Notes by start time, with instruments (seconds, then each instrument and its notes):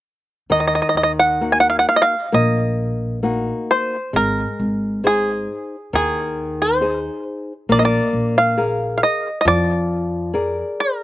0.50 upright bass D#2, nylon-string guitar D#3, five-string banjo D#5
0.60 five-string banjo D#5
0.67 five-string banjo D#5
0.75 five-string banjo D#5
0.82 five-string banjo D#5
0.89 five-string banjo D#5
0.95 upright bass D#2, five-string banjo D#5
1.03 five-string banjo D#5
1.19 five-string banjo F#5
1.41 nylon-string guitar A#3 D#4 F#4
1.52 five-string banjo G#5
1.60 five-string banjo F#5
1.70 five-string banjo F5
1.79 five-string banjo F#5
1.89 five-string banjo F5
1.96 five-string banjo D#5
2.02 five-string banjo F5
2.32 upright bass A#1, nylon-string guitar A#3, five-string banjo D#5
3.23 nylon-string guitar A#3 D#4 F#4
3.71 five-string banjo C5
4.13 upright bass G#1, nylon-string guitar G#3, five-string banjo A#4
4.59 upright bass G#1
5.04 nylon-string guitar D#4 G#4 C5, five-string banjo G#4
5.93 upright bass D#2, nylon-string guitar D#3, five-string banjo G#4
6.62 five-string banjo C5
6.81 nylon-string guitar D#4 G#4 C5
7.69 upright bass A#1, nylon-string guitar A#3, five-string banjo D5
7.79 five-string banjo D#5
7.85 five-string banjo D5
8.13 upright bass A#1
8.38 five-string banjo F5
8.57 nylon-string guitar G#4 A#4 F5
8.98 five-string banjo F5
9.03 five-string banjo D#5
9.41 five-string banjo D#5
9.45 upright bass F2, nylon-string guitar F3, five-string banjo D5
10.34 nylon-string guitar G#4 A#4 D5
10.80 five-string banjo A#4